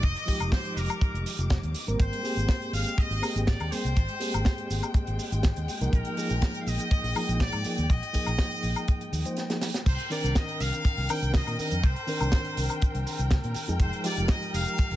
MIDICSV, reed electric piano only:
0, 0, Header, 1, 2, 480
1, 0, Start_track
1, 0, Key_signature, -3, "minor"
1, 0, Tempo, 491803
1, 28, Time_signature, 4, 2, 24, 8
1, 14602, End_track
2, 0, Start_track
2, 0, Title_t, "Reed electric piano"
2, 0, Program_c, 0, 4
2, 252, Note_on_c, 0, 53, 100
2, 260, Note_on_c, 0, 56, 88
2, 267, Note_on_c, 0, 63, 88
2, 272, Note_on_c, 0, 67, 107
2, 1686, Note_off_c, 0, 53, 0
2, 1690, Note_off_c, 0, 56, 0
2, 1694, Note_off_c, 0, 63, 0
2, 1696, Note_off_c, 0, 67, 0
2, 1826, Note_on_c, 0, 55, 90
2, 1829, Note_on_c, 0, 58, 84
2, 1833, Note_on_c, 0, 60, 83
2, 1836, Note_on_c, 0, 70, 97
2, 2157, Note_off_c, 0, 55, 0
2, 2158, Note_off_c, 0, 58, 0
2, 2160, Note_off_c, 0, 60, 0
2, 2162, Note_off_c, 0, 70, 0
2, 2177, Note_on_c, 0, 67, 97
2, 2183, Note_on_c, 0, 58, 86
2, 2190, Note_on_c, 0, 60, 89
2, 2195, Note_on_c, 0, 68, 109
2, 3115, Note_off_c, 0, 67, 0
2, 3118, Note_off_c, 0, 58, 0
2, 3122, Note_off_c, 0, 60, 0
2, 3124, Note_off_c, 0, 68, 0
2, 3142, Note_on_c, 0, 67, 83
2, 3145, Note_on_c, 0, 58, 78
2, 3147, Note_on_c, 0, 60, 80
2, 3151, Note_on_c, 0, 68, 93
2, 3598, Note_off_c, 0, 67, 0
2, 3599, Note_off_c, 0, 58, 0
2, 3600, Note_off_c, 0, 60, 0
2, 3602, Note_off_c, 0, 68, 0
2, 3623, Note_on_c, 0, 55, 74
2, 3625, Note_on_c, 0, 58, 68
2, 3628, Note_on_c, 0, 60, 68
2, 3632, Note_on_c, 0, 68, 84
2, 3815, Note_off_c, 0, 55, 0
2, 3816, Note_off_c, 0, 58, 0
2, 3818, Note_off_c, 0, 60, 0
2, 3820, Note_off_c, 0, 68, 0
2, 4097, Note_on_c, 0, 67, 100
2, 4104, Note_on_c, 0, 58, 89
2, 4109, Note_on_c, 0, 60, 91
2, 4116, Note_on_c, 0, 68, 112
2, 5638, Note_off_c, 0, 67, 0
2, 5642, Note_off_c, 0, 58, 0
2, 5644, Note_off_c, 0, 60, 0
2, 5648, Note_off_c, 0, 68, 0
2, 5667, Note_on_c, 0, 53, 95
2, 5671, Note_on_c, 0, 58, 86
2, 5674, Note_on_c, 0, 63, 86
2, 5677, Note_on_c, 0, 70, 103
2, 5997, Note_off_c, 0, 53, 0
2, 5999, Note_off_c, 0, 58, 0
2, 6001, Note_off_c, 0, 63, 0
2, 6002, Note_off_c, 0, 70, 0
2, 6018, Note_on_c, 0, 53, 94
2, 6023, Note_on_c, 0, 58, 86
2, 6030, Note_on_c, 0, 63, 87
2, 6038, Note_on_c, 0, 68, 107
2, 6955, Note_off_c, 0, 53, 0
2, 6958, Note_off_c, 0, 58, 0
2, 6962, Note_off_c, 0, 63, 0
2, 6965, Note_off_c, 0, 68, 0
2, 6982, Note_on_c, 0, 53, 85
2, 6986, Note_on_c, 0, 58, 76
2, 6988, Note_on_c, 0, 63, 77
2, 6993, Note_on_c, 0, 68, 92
2, 7438, Note_off_c, 0, 53, 0
2, 7440, Note_off_c, 0, 58, 0
2, 7441, Note_off_c, 0, 63, 0
2, 7443, Note_off_c, 0, 68, 0
2, 7459, Note_on_c, 0, 53, 76
2, 7464, Note_on_c, 0, 58, 69
2, 7467, Note_on_c, 0, 63, 70
2, 7469, Note_on_c, 0, 68, 83
2, 7653, Note_off_c, 0, 53, 0
2, 7655, Note_off_c, 0, 58, 0
2, 7657, Note_off_c, 0, 63, 0
2, 7658, Note_off_c, 0, 68, 0
2, 7936, Note_on_c, 0, 53, 97
2, 7942, Note_on_c, 0, 58, 91
2, 7950, Note_on_c, 0, 63, 90
2, 7957, Note_on_c, 0, 68, 107
2, 9002, Note_off_c, 0, 53, 0
2, 9006, Note_off_c, 0, 58, 0
2, 9009, Note_off_c, 0, 63, 0
2, 9013, Note_off_c, 0, 68, 0
2, 9027, Note_on_c, 0, 53, 73
2, 9029, Note_on_c, 0, 58, 67
2, 9032, Note_on_c, 0, 63, 69
2, 9036, Note_on_c, 0, 72, 77
2, 9240, Note_off_c, 0, 53, 0
2, 9241, Note_off_c, 0, 58, 0
2, 9243, Note_off_c, 0, 63, 0
2, 9244, Note_off_c, 0, 72, 0
2, 9266, Note_on_c, 0, 53, 79
2, 9270, Note_on_c, 0, 58, 73
2, 9272, Note_on_c, 0, 63, 71
2, 9276, Note_on_c, 0, 68, 86
2, 9455, Note_off_c, 0, 53, 0
2, 9456, Note_off_c, 0, 58, 0
2, 9457, Note_off_c, 0, 63, 0
2, 9459, Note_off_c, 0, 68, 0
2, 9856, Note_on_c, 0, 51, 94
2, 9863, Note_on_c, 0, 60, 87
2, 9869, Note_on_c, 0, 62, 89
2, 9875, Note_on_c, 0, 70, 104
2, 10794, Note_off_c, 0, 51, 0
2, 10798, Note_off_c, 0, 60, 0
2, 10801, Note_off_c, 0, 62, 0
2, 10804, Note_off_c, 0, 70, 0
2, 10826, Note_on_c, 0, 51, 87
2, 10828, Note_on_c, 0, 60, 79
2, 10831, Note_on_c, 0, 62, 78
2, 10837, Note_on_c, 0, 70, 95
2, 11280, Note_off_c, 0, 51, 0
2, 11281, Note_off_c, 0, 60, 0
2, 11282, Note_off_c, 0, 62, 0
2, 11285, Note_off_c, 0, 70, 0
2, 11307, Note_on_c, 0, 51, 78
2, 11312, Note_on_c, 0, 60, 70
2, 11313, Note_on_c, 0, 62, 68
2, 11317, Note_on_c, 0, 70, 83
2, 11497, Note_off_c, 0, 51, 0
2, 11499, Note_off_c, 0, 60, 0
2, 11500, Note_off_c, 0, 62, 0
2, 11502, Note_off_c, 0, 70, 0
2, 11778, Note_on_c, 0, 51, 98
2, 11786, Note_on_c, 0, 60, 92
2, 11792, Note_on_c, 0, 62, 93
2, 11798, Note_on_c, 0, 70, 107
2, 13319, Note_off_c, 0, 51, 0
2, 13323, Note_off_c, 0, 60, 0
2, 13325, Note_off_c, 0, 62, 0
2, 13329, Note_off_c, 0, 70, 0
2, 13350, Note_on_c, 0, 53, 94
2, 13353, Note_on_c, 0, 56, 86
2, 13356, Note_on_c, 0, 63, 88
2, 13360, Note_on_c, 0, 68, 105
2, 13679, Note_off_c, 0, 53, 0
2, 13680, Note_off_c, 0, 56, 0
2, 13682, Note_off_c, 0, 63, 0
2, 13684, Note_off_c, 0, 68, 0
2, 13700, Note_on_c, 0, 53, 101
2, 13707, Note_on_c, 0, 56, 90
2, 13714, Note_on_c, 0, 63, 91
2, 13719, Note_on_c, 0, 67, 107
2, 14602, Note_off_c, 0, 53, 0
2, 14602, Note_off_c, 0, 56, 0
2, 14602, Note_off_c, 0, 63, 0
2, 14602, Note_off_c, 0, 67, 0
2, 14602, End_track
0, 0, End_of_file